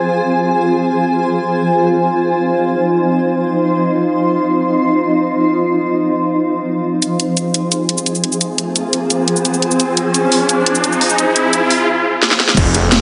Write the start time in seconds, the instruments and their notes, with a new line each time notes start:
Already playing: synth drone F3 C4 G#4, ambient pad F4 C5 G#5
1.47 synth drone D#4
1.85 ambient pad C6
7.02 synth drone F3 C4 G#4, ambient pad F4, closed hi-hat, riser, cabasa
7.20 closed hi-hat, cabasa
7.37 closed hi-hat, cabasa
7.54 ambient pad C5, closed hi-hat, cabasa
7.72 closed hi-hat, cabasa
7.89 closed hi-hat
7.98 ambient pad G#5, cabasa
8.06 closed hi-hat, cabasa
8.15 cabasa
8.24 closed hi-hat
8.32 cabasa
8.41 closed hi-hat, cabasa
8.58 closed hi-hat, cabasa
8.76 closed hi-hat, cabasa
8.93 closed hi-hat, cabasa
9.10 closed hi-hat, cabasa
9.28 closed hi-hat
9.36 cabasa
9.45 closed hi-hat, cabasa
9.54 cabasa
9.62 closed hi-hat
9.71 cabasa
9.80 closed hi-hat, cabasa
9.97 closed hi-hat, cabasa
10.14 closed hi-hat, cabasa
10.32 open hi-hat, cabasa
10.49 closed hi-hat, cabasa
10.66 closed hi-hat
10.75 cabasa
10.84 closed hi-hat, cabasa
10.92 cabasa
11.01 open hi-hat
11.10 cabasa
11.18 closed hi-hat, cabasa
11.36 closed hi-hat, cabasa
11.53 closed hi-hat, cabasa
11.71 open hi-hat, cabasa
12.22 snare
12.31 snare
12.40 snare
12.48 snare
12.57 detuned saw bass F1, synth drone F3 C4 G#4, kick, closed hi-hat, crash, impact, cabasa
12.75 closed hi-hat, cabasa
12.92 snare, closed hi-hat, cabasa